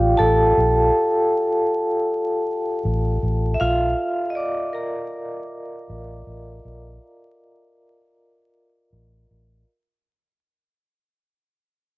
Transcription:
0.00 0.13 A1 medium
0.00 3.61 F4 medium
0.00 9.69 G4 medium
0.00 3.60 F5 medium
0.00 9.69 G5 medium
0.17 0.51 A1 medium
0.17 1.28 A4 medium
0.17 1.28 A5 loud
0.57 0.89 A#1 medium
2.85 3.17 A1 medium
3.23 3.55 A1 medium
3.54 3.60 E5 medium
3.60 3.93 A#1 medium
3.60 4.27 F4 medium
3.60 4.32 F5 loud
4.30 4.36 D#5 medium
4.35 4.53 D5 medium
4.35 4.54 D6 medium
4.73 8.87 A#4 medium
4.73 8.88 A#5 medium
5.89 6.21 A1 medium
6.27 6.58 A1 medium
6.65 6.97 A#1 medium
8.93 9.24 A1 medium
9.31 9.62 A1 medium

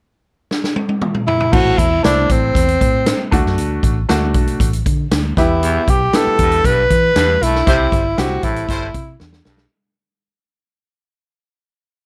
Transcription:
0.51 snare medium
0.64 snare soft
0.76 high tom medium
0.89 high tom medium
1.02 mid tom medium
1.15 mid tom medium
1.27 1.54 E4 medium
1.27 floor tom medium
1.40 floor tom medium
1.52 1.73 A1 loud
1.52 1.81 A3 medium
1.52 1.82 C4 medium
1.52 1.82 E4 medium
1.52 1.80 F#4 loud
1.52 kick loud
1.52 crash medium
1.78 1.99 E2 medium
1.78 2.04 E4 medium
1.78 kick medium
1.78 closed hi-hat medium
2.03 2.25 C2 medium
2.03 2.61 A3 medium
2.03 2.61 C4 medium
2.03 2.33 D4 medium
2.03 2.61 E4 medium
2.03 snare loud
2.03 closed hi-hat medium
2.30 2.50 A1 medium
2.30 3.33 C4 medium
2.30 kick medium
2.30 closed hi-hat medium
2.55 2.75 E2 medium
2.55 kick medium
2.55 closed hi-hat medium
2.68 closed hi-hat soft
2.81 3.11 A2 medium
2.81 kick medium
2.81 closed hi-hat medium
3.06 snare loud
3.06 closed hi-hat medium
3.31 3.42 D2 medium
3.31 3.93 A3 medium
3.31 3.94 D4 medium
3.31 3.94 F#4 medium
3.31 kick medium
3.31 snare soft
3.31 closed hi-hat medium
3.46 3.58 F#2 medium
3.46 snare soft
3.58 3.78 D2 medium
3.58 closed hi-hat medium
3.83 4.03 A1 medium
3.83 kick medium
3.83 closed hi-hat medium
4.09 4.35 D2 medium
4.09 4.66 A3 medium
4.09 4.66 D4 medium
4.09 4.66 F#4 medium
4.09 snare loud
4.09 closed hi-hat medium
4.34 4.55 B1 medium
4.34 kick medium
4.34 closed hi-hat medium
4.47 closed hi-hat soft
4.60 4.80 A1 medium
4.60 kick medium
4.60 closed hi-hat medium
4.73 closed hi-hat soft
4.86 5.06 D3 medium
4.86 kick medium
4.86 closed hi-hat medium
5.11 5.31 D2 medium
5.11 snare loud
5.11 closed hi-hat medium
5.37 5.77 E2 medium
5.37 5.98 B3 medium
5.37 5.99 E4 medium
5.37 5.92 E4 medium
5.37 5.99 G4 medium
5.37 kick medium
5.37 snare soft
5.37 closed hi-hat medium
5.63 5.83 E2 medium
5.63 closed hi-hat medium
5.88 6.08 B1 medium
5.88 6.17 G4 medium
5.88 kick medium
5.88 closed hi-hat medium
6.13 6.70 B3 medium
6.13 6.71 E4 medium
6.13 6.71 G4 medium
6.13 6.68 A4 loud
6.13 snare loud
6.13 closed hi-hat medium
6.27 muted fingered electric bass stroke soft
6.39 6.59 E2 medium
6.39 6.60 G2 medium
6.39 kick medium
6.39 closed hi-hat medium
6.52 closed hi-hat soft
6.64 6.84 B1 medium
6.64 6.85 G2 medium
6.64 7.45 B4 loud
6.64 kick medium
6.64 closed hi-hat medium
6.90 7.10 E3 medium
6.90 kick medium
6.90 closed hi-hat medium
7.16 7.36 E2 medium
7.16 7.36 G2 medium
7.16 snare loud
7.16 closed hi-hat medium
7.41 7.61 B1 medium
7.41 7.62 A2 medium
7.41 8.21 E4 medium
7.41 closed hi-hat medium
7.55 snare soft
7.66 7.87 C2 medium
7.66 7.87 C3 medium
7.66 7.75 G3 medium
7.66 7.95 C4 medium
7.66 7.95 E4 medium
7.66 7.75 E4 medium
7.66 7.96 G4 medium
7.66 7.75 C5 medium
7.66 kick loud
7.66 closed hi-hat medium
7.92 8.12 G1 medium
7.92 8.03 G3 medium
7.92 8.03 E4 medium
7.92 8.03 C5 medium
7.92 kick medium
7.92 closed hi-hat medium
8.18 8.38 C2 medium
8.18 8.74 C4 medium
8.18 8.75 E4 medium
8.18 8.46 F#4 medium
8.18 8.75 G4 medium
8.18 snare loud
8.18 closed hi-hat medium
8.43 8.63 A1 medium
8.43 8.64 A2 medium
8.43 9.20 E4 medium
8.43 kick medium
8.43 closed hi-hat medium
8.56 closed hi-hat soft
8.69 8.89 G1 medium
8.69 8.89 A2 medium
8.69 8.85 G3 medium
8.69 8.85 E4 medium
8.69 8.85 C5 loud
8.69 kick medium
8.69 closed hi-hat medium
8.94 9.14 C3 medium
8.94 kick medium
8.94 closed hi-hat medium
9.20 9.40 E2 medium
9.20 snare medium
9.33 snare medium
9.45 9.65 B1 medium
9.45 9.66 G2 medium
9.45 snare medium
9.57 snare medium

